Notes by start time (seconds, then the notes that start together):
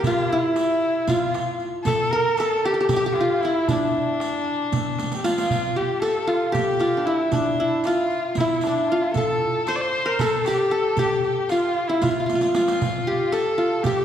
Already playing: A#4
0.00 G4, darbuka dum
0.04 F4, riq
0.29 E4
0.38 F4
0.44 E4
0.56 riq, darbuka tek
1.07 F4, riq, darbuka dum
1.34 riq, darbuka tek
1.60 riq, darbuka ka
1.84 A4, riq, darbuka dum
2.11 A#4
2.37 A4, riq, darbuka tek
2.64 G4
2.74 G4
2.81 G4
2.89 G4, riq, darbuka dum
2.96 G4
3.06 G4
3.15 F4, darbuka tek
3.21 F4
3.41 E4, riq, darbuka ka
3.68 D4, riq, darbuka dum
3.94 darbuka ka
4.20 riq, darbuka tek
4.47 darbuka ka
4.72 riq, darbuka dum
4.99 riq, darbuka tek
5.12 riq
5.17 G4
5.24 F4, riq, darbuka ka
5.38 riq
5.51 riq, darbuka dum
5.76 G4
6.02 A4, riq, darbuka tek
6.27 F4, riq
6.52 G4, riq, darbuka dum
6.79 F4, riq, darbuka tek
6.97 D4
7.05 E4
7.31 D4, riq, darbuka dum
7.60 E4
7.84 F4, riq, darbuka tek
8.10 riq
8.35 E4, riq, darbuka dum
8.40 E4
8.61 D4, riq, darbuka tek
8.67 D4
8.88 F4
9.14 A4, riq, darbuka dum
9.67 C5, riq, darbuka tek
9.76 D5
9.81 C5
9.93 riq
10.06 A#4
10.19 A4, riq, darbuka dum
10.45 G4, riq, darbuka tek
10.71 A4, darbuka ka
10.97 G4, riq, darbuka dum
11.24 G4, riq, darbuka ka
11.49 F4, riq, darbuka tek
11.76 darbuka ka
11.87 E4
12.02 F4, riq, darbuka dum
12.11 F4
12.20 F4
12.26 F4, riq, darbuka tek
12.35 F4
12.41 F4, riq, darbuka ka
12.54 F4, riq, darbuka tek
12.68 riq, darbuka ka
12.81 riq, darbuka dum
13.07 G4
13.32 A4, riq, darbuka tek
13.58 F4, riq
13.83 G4, riq, darbuka dum